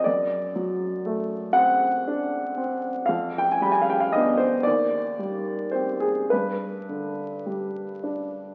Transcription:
0, 0, Header, 1, 2, 480
1, 0, Start_track
1, 0, Tempo, 1006711
1, 27, Time_signature, 6, 3, 24, 8
1, 1467, Tempo, 1058201
1, 2427, Tempo, 1111111
1, 2907, Tempo, 1153846
1, 3840, End_track
2, 0, Start_track
2, 0, Title_t, "Upright piano"
2, 0, Program_c, 0, 0
2, 0, Control_c, 0, 64, 127
2, 19, Note_on_c, 0, 74, 73
2, 29, Note_on_c, 0, 42, 47
2, 34, Control_c, 0, 64, 0
2, 106, Control_c, 0, 64, 127
2, 265, Note_on_c, 0, 54, 42
2, 503, Note_on_c, 0, 57, 50
2, 642, Note_off_c, 0, 54, 0
2, 729, Note_on_c, 0, 78, 96
2, 734, Note_off_c, 0, 74, 0
2, 741, Note_on_c, 0, 60, 50
2, 887, Note_off_c, 0, 57, 0
2, 990, Note_on_c, 0, 62, 54
2, 1130, Note_off_c, 0, 60, 0
2, 1227, Note_on_c, 0, 60, 46
2, 1375, Note_off_c, 0, 62, 0
2, 1450, Note_off_c, 0, 42, 0
2, 1457, Note_on_c, 0, 77, 80
2, 1464, Note_off_c, 0, 78, 0
2, 1469, Note_off_c, 0, 60, 0
2, 1472, Note_on_c, 0, 41, 56
2, 1476, Control_c, 0, 64, 0
2, 1555, Control_c, 0, 64, 127
2, 1604, Note_off_c, 0, 77, 0
2, 1606, Note_on_c, 0, 79, 83
2, 1667, Note_on_c, 0, 80, 65
2, 1676, Note_off_c, 0, 79, 0
2, 1710, Note_on_c, 0, 55, 51
2, 1714, Note_on_c, 0, 83, 70
2, 1723, Note_off_c, 0, 80, 0
2, 1757, Note_on_c, 0, 80, 75
2, 1761, Note_off_c, 0, 83, 0
2, 1799, Note_off_c, 0, 80, 0
2, 1802, Note_on_c, 0, 77, 76
2, 1839, Note_on_c, 0, 79, 75
2, 1844, Note_off_c, 0, 77, 0
2, 1887, Note_on_c, 0, 77, 75
2, 1890, Note_off_c, 0, 79, 0
2, 1942, Note_off_c, 0, 77, 0
2, 1942, Note_on_c, 0, 75, 80
2, 1957, Note_on_c, 0, 62, 52
2, 1958, Note_on_c, 0, 59, 42
2, 2056, Note_on_c, 0, 72, 78
2, 2064, Note_off_c, 0, 75, 0
2, 2092, Note_off_c, 0, 55, 0
2, 2170, Note_off_c, 0, 41, 0
2, 2173, Note_off_c, 0, 62, 0
2, 2173, Note_on_c, 0, 74, 91
2, 2174, Note_off_c, 0, 59, 0
2, 2181, Note_off_c, 0, 72, 0
2, 2187, Note_on_c, 0, 39, 53
2, 2194, Control_c, 0, 64, 0
2, 2259, Control_c, 0, 64, 127
2, 2426, Note_on_c, 0, 55, 44
2, 2652, Note_on_c, 0, 72, 60
2, 2659, Note_off_c, 0, 74, 0
2, 2668, Note_on_c, 0, 60, 35
2, 2669, Note_on_c, 0, 67, 37
2, 2777, Note_on_c, 0, 68, 64
2, 2780, Note_off_c, 0, 72, 0
2, 2809, Note_off_c, 0, 55, 0
2, 2892, Note_off_c, 0, 39, 0
2, 2892, Note_off_c, 0, 60, 0
2, 2893, Note_off_c, 0, 67, 0
2, 2904, Note_off_c, 0, 68, 0
2, 2906, Note_on_c, 0, 71, 60
2, 2917, Control_c, 0, 64, 0
2, 2918, Note_on_c, 0, 43, 46
2, 2977, Control_c, 0, 64, 127
2, 3150, Note_on_c, 0, 50, 36
2, 3388, Note_on_c, 0, 55, 41
2, 3533, Note_off_c, 0, 50, 0
2, 3626, Note_off_c, 0, 71, 0
2, 3626, Note_on_c, 0, 62, 39
2, 3774, Note_off_c, 0, 55, 0
2, 3840, Note_off_c, 0, 43, 0
2, 3840, Note_off_c, 0, 62, 0
2, 3840, End_track
0, 0, End_of_file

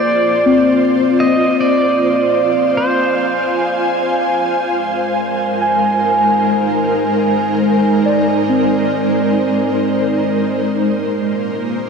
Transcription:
0, 0, Header, 1, 4, 480
1, 0, Start_track
1, 0, Tempo, 500000
1, 11419, End_track
2, 0, Start_track
2, 0, Title_t, "Pedal steel guitar"
2, 0, Program_c, 0, 26
2, 0, Note_on_c, 0, 74, 91
2, 706, Note_off_c, 0, 74, 0
2, 1153, Note_on_c, 0, 75, 110
2, 1529, Note_off_c, 0, 75, 0
2, 1541, Note_on_c, 0, 74, 108
2, 2659, Note_off_c, 0, 74, 0
2, 2663, Note_on_c, 0, 72, 76
2, 3726, Note_off_c, 0, 72, 0
2, 11419, End_track
3, 0, Start_track
3, 0, Title_t, "Synth keys"
3, 0, Program_c, 1, 88
3, 0, Control_c, 1, 64, 127
3, 0, Note_on_c, 1, 74, 47
3, 440, Note_on_c, 1, 60, 58
3, 1146, Control_c, 1, 64, 0
3, 1240, Note_off_c, 1, 74, 0
3, 2891, Note_off_c, 1, 60, 0
3, 4287, Control_c, 1, 64, 127
3, 5389, Note_on_c, 1, 80, 80
3, 7731, Note_on_c, 1, 74, 46
3, 7853, Note_off_c, 1, 80, 0
3, 8152, Note_on_c, 1, 60, 43
3, 10169, Control_c, 1, 64, 0
3, 10233, Note_off_c, 1, 74, 0
3, 10663, Note_off_c, 1, 60, 0
3, 11419, End_track
4, 0, Start_track
4, 0, Title_t, "Ambient pad"
4, 0, Program_c, 2, 92
4, 0, Note_on_c, 2, 58, 74
4, 0, Note_on_c, 2, 65, 75
4, 0, Note_on_c, 2, 72, 71
4, 1514, Note_on_c, 2, 77, 74
4, 2307, Note_on_c, 2, 80, 78
4, 2327, Note_off_c, 2, 58, 0
4, 4109, Note_on_c, 2, 56, 66
4, 4526, Note_on_c, 2, 70, 78
4, 5193, Note_on_c, 2, 63, 64
4, 5605, Note_off_c, 2, 65, 0
4, 6079, Note_off_c, 2, 80, 0
4, 6521, Note_off_c, 2, 77, 0
4, 10150, Note_off_c, 2, 56, 0
4, 10159, Note_off_c, 2, 63, 0
4, 10171, Note_on_c, 2, 58, 82
4, 10683, Note_on_c, 2, 65, 77
4, 11167, Note_on_c, 2, 74, 80
4, 11384, Note_off_c, 2, 70, 0
4, 11419, Note_off_c, 2, 58, 0
4, 11419, Note_off_c, 2, 65, 0
4, 11419, Note_off_c, 2, 72, 0
4, 11419, Note_off_c, 2, 74, 0
4, 11419, End_track
0, 0, End_of_file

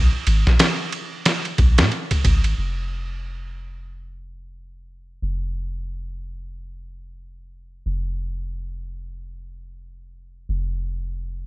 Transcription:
0, 0, Header, 1, 3, 480
1, 0, Start_track
1, 0, Tempo, 659341
1, 1875, Time_signature, 4, 2, 24, 8
1, 8347, End_track
2, 0, Start_track
2, 0, Title_t, "808-style bass"
2, 0, Program_c, 0, 38
2, 0, Note_on_c, 0, 34, 88
2, 82, Note_off_c, 0, 34, 0
2, 198, Note_on_c, 0, 32, 89
2, 323, Note_off_c, 0, 32, 0
2, 341, Note_on_c, 0, 34, 94
2, 425, Note_off_c, 0, 34, 0
2, 1156, Note_on_c, 0, 34, 92
2, 1307, Note_on_c, 0, 46, 90
2, 1318, Note_off_c, 0, 34, 0
2, 1388, Note_off_c, 0, 46, 0
2, 1637, Note_on_c, 0, 32, 74
2, 1853, Note_off_c, 0, 32, 0
2, 1881, Note_on_c, 0, 29, 73
2, 3779, Note_off_c, 0, 29, 0
2, 3803, Note_on_c, 0, 29, 76
2, 5700, Note_off_c, 0, 29, 0
2, 5722, Note_on_c, 0, 29, 77
2, 7619, Note_off_c, 0, 29, 0
2, 7638, Note_on_c, 0, 29, 83
2, 8347, Note_off_c, 0, 29, 0
2, 8347, End_track
3, 0, Start_track
3, 0, Title_t, "Drums"
3, 194, Note_on_c, 9, 51, 63
3, 267, Note_off_c, 9, 51, 0
3, 342, Note_on_c, 9, 38, 46
3, 414, Note_off_c, 9, 38, 0
3, 433, Note_on_c, 9, 51, 90
3, 436, Note_on_c, 9, 38, 116
3, 506, Note_off_c, 9, 51, 0
3, 509, Note_off_c, 9, 38, 0
3, 673, Note_on_c, 9, 51, 66
3, 746, Note_off_c, 9, 51, 0
3, 914, Note_on_c, 9, 51, 79
3, 917, Note_on_c, 9, 38, 97
3, 986, Note_off_c, 9, 51, 0
3, 990, Note_off_c, 9, 38, 0
3, 1057, Note_on_c, 9, 51, 37
3, 1130, Note_off_c, 9, 51, 0
3, 1152, Note_on_c, 9, 51, 56
3, 1153, Note_on_c, 9, 36, 79
3, 1225, Note_off_c, 9, 51, 0
3, 1226, Note_off_c, 9, 36, 0
3, 1296, Note_on_c, 9, 51, 77
3, 1300, Note_on_c, 9, 38, 100
3, 1369, Note_off_c, 9, 51, 0
3, 1373, Note_off_c, 9, 38, 0
3, 1395, Note_on_c, 9, 51, 38
3, 1468, Note_off_c, 9, 51, 0
3, 1535, Note_on_c, 9, 51, 56
3, 1537, Note_on_c, 9, 36, 72
3, 1608, Note_off_c, 9, 51, 0
3, 1610, Note_off_c, 9, 36, 0
3, 1635, Note_on_c, 9, 36, 94
3, 1635, Note_on_c, 9, 51, 68
3, 1707, Note_off_c, 9, 36, 0
3, 1708, Note_off_c, 9, 51, 0
3, 1778, Note_on_c, 9, 51, 44
3, 1851, Note_off_c, 9, 51, 0
3, 8347, End_track
0, 0, End_of_file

